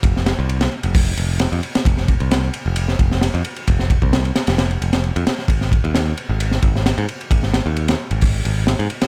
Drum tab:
RD |x-x-xx-x--x-xxxx|x-xxx-x-x-x-xxxx|x-x-xxxxxxxxxxx-|x-xxx-x-x-x-xxxx|
HH |--------o-------|----------------|----------------|----------------|
SD |-oo--o------o--o|-o--o----o-oo---|-o--o-ooo--o--oo|-o--o----o-oo---|
BD |o-------o-------|o-o-------o-----|o-oo------------|o-o-------o-----|

RD |x-x-xx-x--x-xxxx|
HH |--------o-------|
SD |-oo--o------o--o|
BD |o-------o-------|